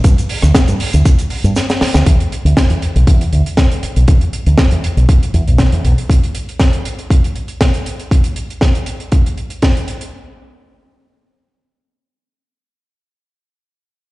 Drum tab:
HH |xxoxxxoxxxoxxxox|xxxxxxxxxxxxxxxx|xxxxxxxxxxxxxxxx|xxxxxxxxxxxxxxxx|
SH |xx-xxx-xxx-xxx-x|----------------|----------------|----------------|
SD |---ro-------oooo|----o-------o---|----o-------o---|----o-------o---|
BD |o---o---o-------|o---o---o---o---|o---o---o---o---|o---o---o---o---|

HH |xxxxxxxxxxxxxxxx|----------------|----------------|
SH |----------------|----------------|----------------|
SD |----o-------o---|----------------|----------------|
BD |o---o---o---o---|----------------|----------------|